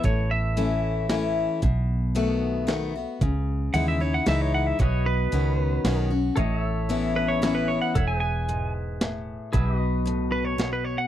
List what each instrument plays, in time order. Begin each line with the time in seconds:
0.04 fingered electric bass A1, steel-string acoustic guitar A2, clean electric guitar C#5, kick, closed hi-hat
0.31 clean electric guitar E5
0.57 steel-string acoustic guitar E3 A3 C#4 E4, closed hi-hat
1.09 steel-string acoustic guitar E3 A3 C#4 E4, snare, closed hi-hat
1.62 fingered electric bass B1, steel-string acoustic guitar B2, kick, closed hi-hat
2.15 steel-string acoustic guitar D#3 A3 B3 F#4, closed hi-hat
2.67 steel-string acoustic guitar D#3 A3 B3 F#4, snare, closed hi-hat
2.96 steel-string acoustic guitar B3 F#4
3.21 fingered electric bass C#2, steel-string acoustic guitar C#3, kick, closed hi-hat
3.73 fingered electric bass D#2, steel-string acoustic guitar E3 G#3 D#4 E4, clean electric guitar F#5, closed hi-hat
3.88 clean electric guitar E5
4.00 steel-string acoustic guitar D#4 E4, clean electric guitar C#5
4.14 clean electric guitar F#5
4.26 fingered electric bass C#2, steel-string acoustic guitar E3 G#3 D#4 E4, clean electric guitar E5, snare, closed hi-hat
4.41 clean electric guitar C#5
4.54 clean electric guitar F#5
4.67 clean electric guitar E5
4.79 fingered electric bass B1, steel-string acoustic guitar B2, pedal steel guitar F#4 B4, clean electric guitar C#5, kick, closed hi-hat
4.83 pedal steel guitar D#5
5.06 clean electric guitar B4
5.32 fingered electric bass C#2, steel-string acoustic guitar B2 D#3 C#4 F#4, closed hi-hat
5.84 fingered electric bass B1, steel-string acoustic guitar B2 D#3 C#4 F#4, snare, closed hi-hat
6.10 steel-string acoustic guitar C#4 F#4
6.36 fingered electric bass A1, steel-string acoustic guitar A2, pedal steel guitar A4 C#5 D#5, kick, closed hi-hat
6.59 pedal steel guitar E5
6.89 steel-string acoustic guitar E3 B3 C#4 E4, closed hi-hat
7.16 clean electric guitar B4
7.28 clean electric guitar C#5
7.42 steel-string acoustic guitar E3 B3 C#4 E4, snare, closed hi-hat
7.55 clean electric guitar B4
7.68 clean electric guitar C#5
7.82 clean electric guitar F#5
7.95 fingered electric bass E1, pedal steel guitar A4 C#5 E5, kick, closed hi-hat
8.08 clean electric guitar G#5
8.15 pedal steel guitar G#4
8.20 pedal steel guitar B4, clean electric guitar G#5
8.49 steel-string acoustic guitar G#2, closed hi-hat
9.01 steel-string acoustic guitar A2, snare, closed hi-hat
9.53 fingered electric bass B1, steel-string acoustic guitar B2, pedal steel guitar G#4 B4 E5, kick, closed hi-hat
9.74 pedal steel guitar F#4 D#5
10.05 steel-string acoustic guitar A2, closed hi-hat
10.32 clean electric guitar B4
10.45 clean electric guitar C#5
10.58 steel-string acoustic guitar B2, snare, closed hi-hat
10.73 clean electric guitar B4
10.85 clean electric guitar C#5
10.98 clean electric guitar F#5